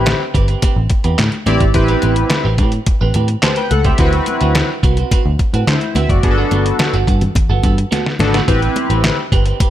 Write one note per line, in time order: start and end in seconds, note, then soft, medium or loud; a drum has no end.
0.00 0.12 A1 loud
0.00 0.22 C4 medium
0.00 0.19 E4 medium
0.00 0.19 G4 medium
0.00 0.19 B4 medium
0.06 muted clean electric guitar stroke soft
0.06 snare loud
0.06 clap medium
0.06 closed hi-hat medium
0.06 high conga medium
0.20 muted clean electric guitar stroke soft
0.34 0.54 G1 medium
0.34 0.49 C4 medium
0.34 0.48 G4 medium
0.34 0.47 B4 medium
0.34 kick medium
0.34 closed hi-hat medium
0.48 0.61 C4 soft
0.48 0.62 G4 medium
0.48 0.63 B4 medium
0.48 closed hi-hat soft
0.62 0.82 C4 medium
0.62 0.76 G4 medium
0.62 0.75 B4 medium
0.62 kick loud
0.62 closed hi-hat medium
0.62 muted conga medium
0.76 0.86 A1 medium
0.76 muted clean electric guitar stroke soft
0.90 muted clean electric guitar stroke soft
0.90 kick medium
0.90 closed hi-hat medium
0.90 muted conga soft
1.04 1.14 E2 medium
1.04 1.20 C4 soft
1.04 1.20 G4 medium
1.04 1.20 B4 medium
1.04 closed hi-hat soft
1.18 1.28 A2 medium
1.18 snare medium
1.18 clap medium
1.18 closed hi-hat medium
1.18 high conga medium
1.32 muted clean electric guitar stroke soft
1.32 closed hi-hat soft
1.46 1.56 A1 medium
1.46 1.64 C4 medium
1.46 1.66 C4 medium
1.46 1.64 E4 medium
1.46 1.64 G4 medium
1.46 1.60 G4 medium
1.46 1.59 B4 medium
1.46 1.64 D5 medium
1.46 closed hi-hat medium
1.46 high conga medium
1.60 1.70 G#1 medium
1.60 muted clean electric guitar stroke soft
1.60 kick medium
1.60 closed hi-hat medium
1.74 1.94 A1 medium
1.74 2.43 C4 medium
1.74 2.43 E4 medium
1.74 2.43 G4 medium
1.74 2.43 B4 loud
1.74 muted clean electric guitar stroke soft
1.74 kick loud
1.74 closed hi-hat medium
1.88 2.01 C4 medium
1.88 2.02 G4 medium
1.88 2.03 B4 medium
1.88 closed hi-hat soft
2.02 2.23 A1 medium
2.02 2.18 C4 medium
2.02 2.17 G4 medium
2.02 2.16 B4 medium
2.02 closed hi-hat medium
2.02 muted conga soft
2.16 muted clean electric guitar stroke soft
2.16 closed hi-hat medium
2.30 muted clean electric guitar stroke soft
2.30 snare loud
2.30 clap medium
2.30 closed hi-hat medium
2.30 high conga medium
2.45 2.60 A1 loud
2.45 2.58 C4 medium
2.45 2.58 G4 medium
2.45 2.59 B4 medium
2.58 2.78 A2 medium
2.58 2.74 C4 medium
2.58 2.73 G4 medium
2.58 2.72 B4 medium
2.58 kick medium
2.58 closed hi-hat medium
2.72 muted clean electric guitar stroke medium
2.72 closed hi-hat soft
2.86 muted clean electric guitar stroke soft
2.86 kick loud
2.86 closed hi-hat medium
2.86 muted conga medium
3.01 3.11 A1 medium
3.01 3.14 C4 medium
3.01 3.14 G4 medium
3.01 3.15 B4 medium
3.14 3.35 A2 medium
3.14 3.30 C4 medium
3.14 3.29 G4 medium
3.14 3.28 B4 medium
3.14 closed hi-hat medium
3.14 muted conga soft
3.14 low conga medium
3.28 muted clean electric guitar stroke soft
3.28 closed hi-hat soft
3.42 3.63 C4 medium
3.42 3.57 G4 medium
3.42 3.56 B4 medium
3.42 3.56 C5 medium
3.42 3.56 A5 medium
3.42 snare loud
3.42 clap medium
3.42 closed hi-hat medium
3.42 high conga medium
3.56 3.70 B4 medium
3.56 3.70 G5 medium
3.56 muted clean electric guitar stroke soft
3.56 closed hi-hat soft
3.71 3.91 C#2 medium
3.71 3.85 A4 medium
3.71 3.84 F#5 medium
3.71 muted clean electric guitar stroke soft
3.71 closed hi-hat medium
3.71 high conga medium
3.85 3.98 C4 soft
3.85 4.00 G4 medium
3.85 4.12 G4 medium
3.85 4.00 C5 medium
3.85 4.12 E5 medium
3.85 kick medium
3.85 closed hi-hat soft
3.98 4.18 D2 medium
3.98 4.67 C4 medium
3.98 4.19 C4 medium
3.98 4.67 E4 medium
3.98 4.68 F#4 medium
3.98 4.13 F#4 medium
3.98 4.68 B4 medium
3.98 4.13 B4 medium
3.98 kick medium
3.98 closed hi-hat medium
4.13 muted clean electric guitar stroke soft
4.13 closed hi-hat soft
4.26 muted clean electric guitar stroke soft
4.26 closed hi-hat medium
4.26 muted conga soft
4.41 4.61 D2 loud
4.41 4.54 C4 soft
4.41 4.54 F#4 medium
4.41 4.55 B4 medium
4.41 closed hi-hat medium
4.55 muted clean electric guitar stroke soft
4.55 snare loud
4.55 clap medium
4.55 closed hi-hat medium
4.55 high conga medium
4.69 muted clean electric guitar stroke soft
4.83 5.03 C2 medium
4.83 4.98 C4 medium
4.83 4.97 F#4 medium
4.83 4.97 B4 medium
4.83 kick medium
4.83 closed hi-hat medium
4.97 5.11 C4 soft
4.97 5.12 F#4 medium
4.97 5.12 B4 medium
4.97 closed hi-hat soft
5.11 5.31 C4 medium
5.11 5.26 F#4 medium
5.11 5.25 B4 medium
5.11 kick loud
5.11 closed hi-hat medium
5.11 muted conga soft
5.26 5.35 D2 medium
5.26 muted clean electric guitar stroke soft
5.39 muted clean electric guitar stroke soft
5.39 kick medium
5.39 closed hi-hat medium
5.39 muted conga soft
5.54 5.63 A2 medium
5.54 5.69 C4 medium
5.54 5.69 F#4 medium
5.54 5.69 B4 medium
5.54 closed hi-hat soft
5.67 5.77 D3 loud
5.67 5.94 E4 medium
5.67 5.94 C5 medium
5.67 snare medium
5.67 clap medium
5.67 closed hi-hat medium
5.67 high conga medium
5.81 muted clean electric guitar stroke soft
5.81 closed hi-hat soft
5.95 6.05 D2 medium
5.95 6.15 C4 medium
5.95 6.09 F#4 medium
5.95 6.08 B4 medium
5.95 6.09 E5 medium
5.95 closed hi-hat medium
5.95 high conga medium
6.09 6.19 F#1 medium
6.09 6.23 F#4 medium
6.09 6.36 D5 medium
6.09 muted clean electric guitar stroke soft
6.09 kick medium
6.09 closed hi-hat medium
6.23 6.43 G1 medium
6.23 6.92 B3 medium
6.23 6.92 D4 medium
6.23 6.92 F#4 medium
6.23 6.30 G#4 medium
6.23 muted clean electric guitar stroke soft
6.23 kick loud
6.23 closed hi-hat medium
6.31 6.95 A4 loud
6.38 6.51 B3 medium
6.38 6.51 F#4 medium
6.38 6.52 A4 medium
6.51 6.71 G1 medium
6.51 6.67 B3 medium
6.51 6.66 F#4 medium
6.51 6.65 A4 medium
6.51 closed hi-hat medium
6.51 muted conga soft
6.66 muted clean electric guitar stroke soft
6.66 closed hi-hat medium
6.79 muted clean electric guitar stroke soft
6.79 snare loud
6.79 clap medium
6.79 closed hi-hat medium
6.79 high conga medium
6.94 7.03 G1 medium
6.94 7.06 B3 medium
6.94 7.07 F#4 medium
6.94 7.07 A4 medium
6.94 closed hi-hat soft
7.07 7.27 G2 medium
7.07 7.23 B3 medium
7.07 7.22 F#4 medium
7.07 7.21 A4 medium
7.07 kick medium
7.07 closed hi-hat medium
7.21 muted clean electric guitar stroke medium
7.21 closed hi-hat soft
7.21 low conga medium
7.35 muted clean electric guitar stroke soft
7.35 kick loud
7.35 closed hi-hat medium
7.35 muted conga medium
7.35 low conga medium
7.49 7.59 G1 medium
7.49 7.62 B3 medium
7.49 7.63 F#4 medium
7.49 7.64 A4 medium
7.63 7.83 G2 medium
7.63 7.79 B3 medium
7.63 7.77 F#4 medium
7.63 7.77 A4 medium
7.63 kick medium
7.63 closed hi-hat medium
7.63 low conga medium
7.78 muted clean electric guitar stroke soft
7.78 closed hi-hat soft
7.91 8.11 B3 medium
7.91 8.05 F#4 medium
7.91 8.04 A4 medium
7.91 snare medium
7.91 closed hi-hat medium
7.91 high conga medium
8.06 muted clean electric guitar stroke soft
8.06 snare medium
8.19 8.39 G#1 medium
8.19 8.37 B3 medium
8.19 8.37 D4 medium
8.19 8.37 F#4 medium
8.19 8.37 A4 loud
8.19 muted clean electric guitar stroke soft
8.19 snare medium
8.19 closed hi-hat medium
8.19 high conga medium
8.34 8.48 B3 soft
8.34 8.48 F#4 soft
8.34 8.48 B4 medium
8.34 snare medium
8.34 closed hi-hat medium
8.48 8.67 A1 loud
8.48 9.16 C4 medium
8.48 8.68 C4 medium
8.48 9.16 E4 medium
8.48 9.16 G4 medium
8.48 8.62 G4 medium
8.48 9.16 B4 loud
8.48 8.61 B4 medium
8.48 kick loud
8.48 closed hi-hat medium
8.62 muted clean electric guitar stroke soft
8.62 closed hi-hat soft
8.76 muted clean electric guitar stroke soft
8.76 closed hi-hat medium
8.76 muted conga soft
8.90 9.09 A1 medium
8.90 9.03 C4 soft
8.90 9.03 G4 medium
8.90 9.03 B4 medium
8.90 closed hi-hat medium
9.04 muted clean electric guitar stroke soft
9.04 snare loud
9.04 clap medium
9.04 closed hi-hat medium
9.04 high conga medium
9.18 muted clean electric guitar stroke soft
9.32 9.51 G1 medium
9.32 9.46 C4 medium
9.32 9.46 G4 medium
9.32 9.45 B4 medium
9.32 kick medium
9.32 closed hi-hat medium
9.46 9.59 C4 soft
9.46 9.59 G4 medium
9.46 9.60 B4 medium
9.46 closed hi-hat soft
9.60 9.70 C4 medium
9.60 9.70 G4 medium
9.60 9.70 B4 medium
9.60 kick loud
9.60 closed hi-hat loud
9.60 muted conga medium